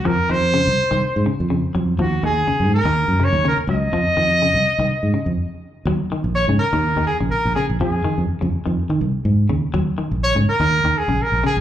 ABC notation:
X:1
M:4/4
L:1/16
Q:"Swing 16ths" 1/4=124
K:Ebdor
V:1 name="Trumpet"
B2 c8 z6 | G2 A4 B4 d2 B2 e2- | e12 z4 | z4 d2 B4 A2 B2 A2 |
A4 z12 | z4 d2 B4 A2 B2 A2 |]
V:2 name="Clean electric guitar" clef=bass
F,2 E,2 D,2 z E,2 z D,2 D,2 G,2 | F,2 E,2 D,2 z E,2 z D,2 D,2 G,2 | F,2 E,2 D,2 z E,2 z D,2 z4 | G,2 E,2 z D,2 E,2 E,2 D,2 z D,2 |
F,2 E,2 z D,2 E,2 E,2 z3 D,2 | G,2 E,2 z D,2 E,2 E,2 D,2 z D,2 |]
V:3 name="Fingered electric bass" clef=bass
F,, z F,,3 C,, z C,, z A,, z F,,2 z F,,2 | E,,2 E,,2 z A,,2 E,,2 G,,2 E,,2 z D,,2 | F,, z F,,3 C,, z C,, z A,, z F,, z4 | E,, z2 B,,,2 A,, z E,,2 E,, z B,,, z B,,, z B,,, |
F,,2 z F,, z F,, z F,, z E, C,, z A,,2 E,, z | E,, z2 B,,,2 A,, z E,,2 E,, z B,,, z B,,, z B,,, |]